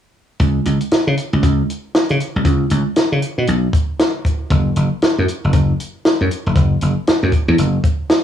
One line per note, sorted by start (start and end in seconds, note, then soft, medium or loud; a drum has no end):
0.40 0.59 C#2 loud
0.40 kick loud
0.40 closed hi-hat medium
0.65 0.77 C#2 medium
0.65 closed hi-hat medium
0.81 closed hi-hat soft
0.91 muted slap bass stroke soft
0.91 snare loud
0.91 closed hi-hat medium
1.07 1.15 C#3 medium
1.17 closed hi-hat medium
1.33 1.40 C#2 medium
1.43 1.62 C#2 medium
1.43 kick medium
1.43 closed hi-hat medium
1.70 closed hi-hat medium
1.95 snare loud
1.95 closed hi-hat medium
2.09 2.18 C#3 medium
2.09 closed hi-hat soft
2.20 closed hi-hat medium
2.36 2.43 C2 medium
2.45 2.64 C#2 loud
2.45 kick loud
2.45 closed hi-hat medium
2.70 2.82 C#2 medium
2.70 closed hi-hat medium
2.96 muted slap bass stroke soft
2.96 snare loud
2.96 closed hi-hat medium
3.12 3.20 C#3 medium
3.22 closed hi-hat medium
3.38 3.45 B2 medium
3.47 3.67 B1 medium
3.47 closed hi-hat medium
3.73 kick loud
3.73 closed hi-hat medium
3.99 snare loud
3.99 closed hi-hat medium
4.25 kick medium
4.25 closed hi-hat medium
4.50 4.70 F#1 loud
4.50 kick loud
4.50 closed hi-hat medium
4.76 4.88 F#1 medium
4.76 closed hi-hat medium
5.02 muted slap bass stroke soft
5.02 snare loud
5.02 closed hi-hat medium
5.18 5.26 F#2 loud
5.28 closed hi-hat medium
5.44 5.51 F#1 medium
5.53 5.72 F#1 medium
5.53 kick medium
5.53 closed hi-hat medium
5.80 closed hi-hat medium
6.05 snare loud
6.05 closed hi-hat medium
6.21 6.28 F#2 medium
6.31 closed hi-hat medium
6.46 6.54 F1 medium
6.56 6.75 F#1 medium
6.56 kick loud
6.56 closed hi-hat medium
6.81 6.93 F#1 medium
6.81 closed hi-hat medium
7.07 muted slap bass stroke soft
7.07 snare loud
7.07 closed hi-hat medium
7.23 7.30 F#2 loud
7.32 kick medium
7.32 closed hi-hat medium
7.48 7.56 E2 medium
7.58 7.77 F#1 medium
7.58 closed hi-hat medium
7.84 kick medium
7.84 closed hi-hat medium
8.10 snare loud
8.10 closed hi-hat medium